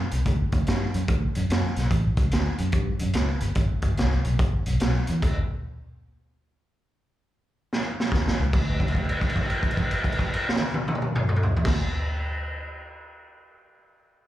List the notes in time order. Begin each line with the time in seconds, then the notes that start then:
0.11 C2, closed hi-hat
0.26 D2, kick, closed hi-hat
0.52 D2, kick, closed hi-hat
0.67 G2, snare, closed hi-hat
0.94 F#2, closed hi-hat
1.08 D2, kick, closed hi-hat
1.35 F#2, closed hi-hat
1.50 F#2, snare, closed hi-hat
1.76 B1, snare, closed hi-hat
1.91 A1, kick, closed hi-hat
2.17 C#2, kick, closed hi-hat
2.31 D2, snare, closed hi-hat
2.58 F#2, closed hi-hat
2.72 G2, kick, closed hi-hat
2.99 F#2, closed hi-hat
3.13 C#2, snare, closed hi-hat
3.40 G1, closed hi-hat
3.55 G1, kick, closed hi-hat
3.82 G1, kick, closed hi-hat
3.97 C2, snare, closed hi-hat
4.25 B1, closed hi-hat
4.39 G1, kick, closed hi-hat
4.66 B1, closed hi-hat
4.80 B1, snare, closed hi-hat
5.07 E2, closed hi-hat
5.22 D2, kick, closed hi-hat, crash
7.73 snare
8.00 snare
8.12 D#2, kick, snare
8.28 snare
8.40 C#2
8.53 D2, kick, crash
8.80 kick, crash
8.88 crash
8.95 kick, crash
9.09 crash
9.21 kick, crash
9.29 crash
9.36 kick, crash
9.50 crash
9.63 kick, crash
9.71 crash
9.77 kick, crash
9.91 crash
10.04 kick, crash
10.12 crash
10.19 kick, crash
10.34 crash
10.49 snare
10.56 snare
10.61 high tom
10.74 high tom
10.88 high tom
10.95 mid tom
11.02 mid tom
11.16 mid tom
11.29 mid tom
11.36 mid tom
11.43 floor tom
11.57 floor tom
11.65 D2, kick, snare, crash